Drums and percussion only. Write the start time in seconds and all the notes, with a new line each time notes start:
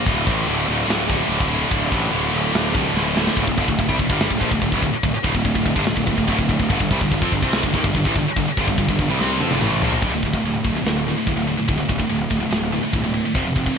0.06 kick, china
0.27 kick
0.48 china
0.89 snare, china
1.10 kick
1.30 china
1.40 kick
1.71 kick, china
1.92 kick
2.13 china
2.54 snare, china
2.75 kick
2.97 snare
3.17 snare
3.27 snare
3.37 kick, crash
3.47 kick
3.58 kick
3.68 kick
3.79 kick, crash
3.89 kick
3.99 kick
4.10 kick
4.20 snare, crash
4.31 kick
4.41 kick
4.51 kick
4.62 kick, crash
4.72 kick
4.82 kick
5.03 kick, crash
5.24 kick
5.35 kick
5.44 kick, crash
5.55 kick
5.66 kick
5.76 kick
5.86 snare, crash
5.97 kick
6.07 kick
6.18 kick
6.27 kick, crash
6.39 kick
6.49 kick
6.60 kick
6.70 kick, crash
6.80 kick
6.91 kick
7.01 kick
7.12 kick, crash
7.22 kick
7.32 kick
7.43 kick
7.52 snare, crash
7.63 kick
7.74 kick
7.84 kick
7.95 kick, crash
8.05 kick
8.16 kick
8.36 kick, crash
8.57 kick
8.68 kick
8.78 kick, crash
8.89 kick
8.99 kick
9.21 snare
9.40 high tom
9.51 high tom
9.61 mid tom
9.82 floor tom
9.92 floor tom
10.02 kick, open hi-hat
10.23 kick
10.34 kick
10.45 open hi-hat
10.65 kick
10.85 snare, open hi-hat
11.27 kick, open hi-hat
11.69 kick, open hi-hat
11.89 kick
12.00 kick
12.10 open hi-hat
12.31 kick
12.51 snare, open hi-hat
12.93 kick, open hi-hat
13.35 kick, open hi-hat
13.56 kick
13.66 kick